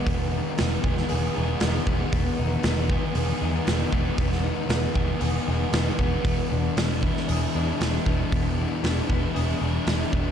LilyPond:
<<
  \new Staff \with { instrumentName = "Clean electric guitar" } { \time 4/4 \key e \major \tempo 4 = 116 <b dis' gis'>8 dis'8 b8 b8 gis'8 dis'8 b8 b8 | b8 dis'8 b8 b8 gis'8 dis'8 b8 b8 | b8 dis'8 b8 b8 gis'8 dis'8 b8 b8 | b8 d'8 b8 b8 gis'8 d'8 b8 b8 |
b8 d'8 b8 b8 gis'8 d'8 b8 b8 | }
  \new Staff \with { instrumentName = "Overdriven electric guitar" } { \time 4/4 \key e \major <e, gis b gis'>4 b8 gis'8 b8 gis'8 gis8 b8 | e,4 b8 gis'8 b8 gis'8 gis8 b8 | e,4 b8 gis'8 b8 gis'8 gis8 b8 | e,4 d'8 e'8 d'8 e'8 gis8 d'8 |
e,4 d'8 e'8 d'8 e'8 gis8 d'8 | }
  \new Staff \with { instrumentName = "Distorted electric guitar" } { \clef bass \time 4/4 \key e \major <e, dis gis b>8 dis8 gis8 dis8 b8 gis8 dis8 b8 | e,8 dis8 gis8 dis8 b8 gis8 dis8 b8 | e,8 dis8 gis8 dis8 b8 gis8 dis8 b8 | e,8 e8 gis8 e8 d'8 gis8 e8 d'8 |
e,8 e8 gis8 e8 d'8 gis8 e8 d'8 | }
  \new Staff \with { instrumentName = "Picked electric bass" } { \clef bass \time 4/4 \key e \major e,,4 e,,8 e,,8 e,,8 e,,8 e,,8 e,,8 | e,,8 e,,8 e,,4 e,,8 e,8 e,,8 e,,8 | e,,4 e,,8 e,,8 e,,8 e,,8 e,,8 e,,8 | e,,8 e,,8 e,,4 e,,8 e,8 e,,8 e,,8 |
e,,4 e,,8 e,,8 e,,8 e,,8 e,,8 e,,8 | }
  \new DrumStaff \with { instrumentName = "Drums" } \drummode { \time 4/4 <hho bd>4 <hho sn>8 bd16 sn16 hho4 <hho sn>8 bd8 | <hho bd>4 <hho sn>8 bd8 hho4 <hho sn>8 bd8 | <hho bd>16 sn8. <hho sn>8 bd8 hho4 <hho sn>8 bd8 | <hho bd>4 <hho sn>8 bd16 sn16 hho4 <hho sn>8 bd8 |
<hho bd>4 <hho sn>8 bd8 hho4 <hho sn>8 bd8 | }
>>